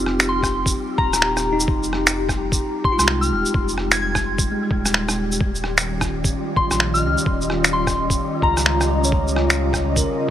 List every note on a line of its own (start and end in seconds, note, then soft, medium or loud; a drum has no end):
0.00 0.74 F1 loud
0.00 10.30 G3 medium
0.00 0.71 C4 medium
0.00 0.73 D#4 medium
0.00 2.92 F4 medium
0.00 5.40 G4 medium
0.00 10.30 G4 medium
0.06 cross-stick soft
0.20 finger snap loud
0.20 shaker medium
0.29 0.66 C6 medium
0.43 kick medium
0.43 cross-stick medium
0.43 shaker soft
0.66 kick loud
0.66 shaker medium
0.98 1.67 D#1 loud
0.98 1.64 A#5 loud
0.98 kick loud
1.13 cross-stick soft
1.13 shaker medium
1.22 finger snap loud
1.37 cross-stick medium
1.37 shaker soft
1.53 2.50 D#4 medium
1.60 shaker medium
1.68 2.60 F1 loud
1.68 kick loud
1.83 shaker soft
1.93 cross-stick soft
2.07 finger snap loud
2.07 shaker medium
2.29 kick medium
2.29 cross-stick medium
2.29 shaker soft
2.52 kick loud
2.52 shaker medium
2.84 2.94 C6 medium
2.84 kick loud
2.92 3.90 F4 medium
2.98 3.33 C2 loud
2.98 3.92 G#3 medium
2.98 3.04 C6 medium
2.98 cross-stick soft
2.98 shaker medium
3.08 finger snap loud
3.21 3.46 F6 medium
3.21 shaker soft
3.31 3.44 D#1 medium
3.46 shaker medium
3.54 4.46 F1 loud
3.54 kick loud
3.68 shaker soft
3.78 cross-stick soft
3.92 3.99 G#6 medium
3.92 finger snap loud
3.92 shaker medium
4.02 4.67 G#6 medium
4.15 kick medium
4.15 cross-stick medium
4.15 shaker soft
4.38 kick loud
4.38 shaker medium
4.52 5.50 G#3 medium
4.70 5.39 D#1 loud
4.70 kick loud
4.86 cross-stick soft
4.86 shaker medium
4.94 finger snap loud
5.09 cross-stick medium
5.09 shaker soft
5.32 shaker medium
5.41 6.32 D#1 loud
5.41 9.13 D#3 medium
5.41 kick loud
5.55 shaker soft
5.62 10.30 C#4 medium
5.62 cross-stick soft
5.78 finger snap loud
5.78 shaker medium
5.85 10.30 F4 medium
6.01 kick medium
6.01 cross-stick medium
6.01 shaker soft
6.24 kick loud
6.24 shaker medium
6.49 10.30 D#5 medium
6.56 6.66 C6 medium
6.56 kick loud
6.71 7.04 A#1 loud
6.71 6.77 C6 medium
6.71 cross-stick soft
6.71 shaker medium
6.80 finger snap loud
6.94 7.18 F6 medium
6.94 shaker soft
7.03 7.16 C#2 medium
7.18 shaker medium
7.26 8.18 D#1 loud
7.26 kick loud
7.41 shaker soft
7.50 cross-stick soft
7.64 finger snap loud
7.64 shaker medium
7.73 8.10 C6 medium
7.87 kick medium
7.87 cross-stick medium
7.87 shaker soft
8.10 kick loud
8.10 shaker medium
8.42 9.11 C#2 medium
8.42 9.09 A#5 loud
8.42 kick loud
8.57 cross-stick soft
8.57 shaker medium
8.66 finger snap loud
8.81 cross-stick medium
8.81 shaker soft
9.04 9.33 C#5 medium
9.04 shaker medium
9.12 10.04 C#2 loud
9.12 10.30 C#3 medium
9.12 kick loud
9.28 shaker soft
9.36 cross-stick soft
9.50 finger snap loud
9.50 shaker medium
9.73 kick medium
9.73 cross-stick medium
9.73 shaker soft
9.96 10.30 A#4 medium
9.96 kick loud
9.96 shaker medium